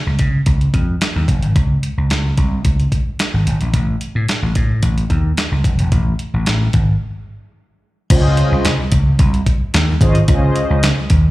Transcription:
0.07 slap bass C#2
0.19 slap bass C#3, kick, closed hi-hat
0.46 slap bass C#2, kick, closed hi-hat
0.61 closed hi-hat
0.74 slap bass F2, kick, closed hi-hat
1.01 snare, clap, closed hi-hat
1.16 slap bass D#2
1.28 slap bass F#1, kick, closed hi-hat
1.43 slap bass G#1, closed hi-hat
1.56 slap bass C#2, kick, closed hi-hat
1.83 closed hi-hat
1.98 slap bass C#2
2.10 slap bass C#2, snare, clap, closed hi-hat
2.38 slap bass C2, kick, closed hi-hat
2.65 slap bass C#2, kick, closed hi-hat
2.80 closed hi-hat
2.92 kick, closed hi-hat
3.19 snare, clap, closed hi-hat
3.34 slap bass G#1
3.47 slap bass G#1, closed hi-hat
3.61 slap bass A#1, closed hi-hat
3.74 slap bass A1, kick, closed hi-hat
4.01 closed hi-hat
4.15 slap bass A2
4.29 snare, clap, closed hi-hat
4.42 slap bass A1
4.55 slap bass A2, kick, closed hi-hat
4.83 slap bass A1, kick, closed hi-hat
4.98 closed hi-hat
5.10 slap bass D#2, kick, closed hi-hat
5.37 snare, clap, closed hi-hat
5.52 slap bass C#2
5.64 slap bass F#1, kick, closed hi-hat
5.79 slap bass E1, closed hi-hat
5.92 slap bass A1, kick, closed hi-hat
6.19 closed hi-hat
6.34 slap bass A1
6.46 slap bass A1, snare, clap, closed hi-hat
6.73 slap bass G#1, kick, closed hi-hat
8.10 slap bass C#2, analog polysynth C#4 F4 G#4 C5 D5, kick, closed hi-hat, crash
8.17 analog polysynth D#5
8.37 closed hi-hat
8.52 slap bass C2
8.65 slap bass C2, snare, clap, closed hi-hat
8.92 slap bass C#2, kick, closed hi-hat
9.19 slap bass C2, kick, closed hi-hat
9.34 closed hi-hat
9.46 kick, closed hi-hat
9.74 slap bass D#2, snare, clap, closed hi-hat
10.01 slap bass G#1, analog polysynth C#4 F4 G#4 C5 D#5, kick, closed hi-hat
10.15 closed hi-hat
10.28 slap bass C#2, analog polysynth C#4 F4 G#4 C5 D#5, kick, closed hi-hat
10.56 closed hi-hat
10.70 slap bass C#2
10.83 snare, clap, closed hi-hat
11.10 slap bass D#2, kick, closed hi-hat

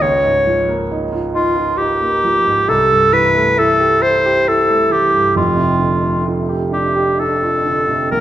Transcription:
0.02 grand piano C#2, clarinet C#5
0.25 grand piano G#2
0.47 grand piano F3
0.69 grand piano A#3
0.92 grand piano D#4
1.13 grand piano F4
1.34 grand piano D#4, clarinet F4
1.56 grand piano F4
1.78 grand piano D#4, clarinet G4
2.01 grand piano A#3
2.24 grand piano F3
2.46 grand piano G#2
2.68 grand piano C2, clarinet A4
2.91 grand piano G2
3.12 grand piano E3, clarinet B4
3.35 grand piano A3
3.57 grand piano E4, clarinet A4
3.79 grand piano G4
4.00 grand piano E4, clarinet C5
4.26 grand piano G4
4.47 grand piano E4, clarinet A4
4.69 grand piano A3
4.90 grand piano E3, clarinet G4
5.14 grand piano G2
5.35 grand piano F1 F2, clarinet F4
5.57 grand piano C3
5.79 grand piano D3
6.02 grand piano A3
6.26 grand piano F4
6.49 grand piano G4
6.71 grand piano D4, clarinet G4
6.95 grand piano G4
7.19 grand piano D4, clarinet A4
7.42 grand piano F4
7.65 grand piano D3
7.89 grand piano C3
8.11 grand piano A#1, clarinet A#4

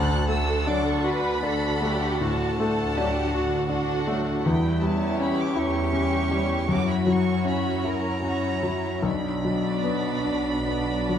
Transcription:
Already playing: double bass section D2, grand piano D2, viola section D4 F#4, violin section A4 F#5 F#6, cello section A4
0.29 grand piano A3, viola section D4 F#4, violin section A4 F#5 E6
0.67 french horn section F#3 D4, grand piano D4, violin section D6
0.88 violin section C#6
1.04 double bass section D2, grand piano F#4, cello section B4, violin section B5
1.43 grand piano D4, viola section D4 F#4, violin section A4 F#5, cello section A4
1.82 french horn section F#3 D4, grand piano A3, cello section G4
2.21 double bass section D2, grand piano A2, cello section F#4, violin section A5
2.59 grand piano A3, viola section D4 F#4, cello section A4, violin section A4 F#5
2.96 french horn section F#3 D4, grand piano D4, cello section G4
3.32 double bass section D2, cello section F#4, grand piano F#4
3.69 grand piano D4, viola section D4 F#4, violin section A4 F#5
4.07 french horn section F#3 D4, grand piano A3
4.43 double bass section E2, grand piano E2, french horn section G3 E4, cello section E4, violin section G5
4.82 grand piano G3, viola section C#4 E4, violin section G4 C#5 A5
5.19 grand piano C#4, violin section B5
5.38 violin section D6
5.55 double bass section E2, grand piano E4, cello section G4, violin section C#6
5.59 french horn section G3 E4
5.93 grand piano C#4, viola section C#4 E4, violin section G4 C#5
6.31 grand piano G3
6.68 grand piano F#2, double bass section F#2, french horn section F#3 E4, viola section C#4 E4, cello section F#4, violin section F#4 C#5 D6
6.89 violin section B5
7.07 grand piano F#3, viola section C#4 E4, violin section F#4 C#5 C#6
7.45 grand piano C#4, violin section B5
7.84 double bass section F#2, french horn section F#3 E4, grand piano E4, cello section A#4, violin section A#5
8.22 grand piano C#4, viola section C#4 E4, cello section F#4, violin section F#4 C#5
8.63 grand piano F#3, cello section E4
9.03 grand piano B1, double bass section B1, french horn section F#3 D4, cello section D4, violin section B5
9.45 grand piano F#3, viola section B3 D4, violin section F#4 D5
9.84 grand piano B3
10.24 double bass section B1, grand piano D4
10.66 grand piano B3, viola section B3 D4, violin section F#4 D5
11.09 grand piano F#3

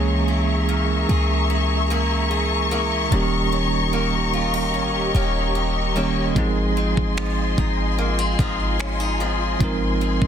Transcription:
Already playing: 808-style bass C#2, steel-string acoustic guitar C#3, tine electric piano E3 G#3 A#3 C#4 G#4, string section G#4 E5 A#5 C#6
0.28 steel-string acoustic guitar E4
0.69 steel-string acoustic guitar A#3
1.09 808-style bass C#2, steel-string acoustic guitar G#4
1.50 steel-string acoustic guitar E4
1.90 steel-string acoustic guitar A#3 E4 G#4
2.31 steel-string acoustic guitar G#4
2.71 steel-string acoustic guitar A#3 E4 G#4
3.10 808-style bass D#1, tine electric piano D#3 G3 A#3 C#4, steel-string acoustic guitar D#3, string section G4 D#5
3.15 tine electric piano G4
3.52 steel-string acoustic guitar C#4
3.93 steel-string acoustic guitar A#3
4.33 steel-string acoustic guitar F4
4.54 steel-string acoustic guitar G4
4.74 808-style bass G1, steel-string acoustic guitar C#4
4.94 808-style bass D#1
5.14 808-style bass D#1, steel-string acoustic guitar A#3 C#4 G4
5.55 steel-string acoustic guitar G4
5.95 tine electric piano D#3 G3 A#3 C#4 G4, steel-string acoustic guitar A#3 C#4 G4
6.35 808-style bass G#1, steel-string acoustic guitar G#2, tine electric piano F3 G#3 C4 D#4, string section F4 G#5 C6, kick
6.39 tine electric piano G#4
6.77 steel-string acoustic guitar C4
6.97 808-style bass G#1, kick
7.17 steel-string acoustic guitar F3, finger snap
7.58 808-style bass G#1, steel-string acoustic guitar D#4, kick
7.98 steel-string acoustic guitar A#3
8.19 steel-string acoustic guitar C4
8.39 808-style bass G#1, steel-string acoustic guitar F3 C4 D#4, kick
8.79 steel-string acoustic guitar C#4, finger snap
9.00 steel-string acoustic guitar D#4
9.20 steel-string acoustic guitar F3 C4 D#4
9.59 808-style bass G#1, steel-string acoustic guitar G#2, tine electric piano F3 G#3 C4 D#4, kick
9.64 tine electric piano A#4
10.01 steel-string acoustic guitar C4
10.22 808-style bass G#1, kick

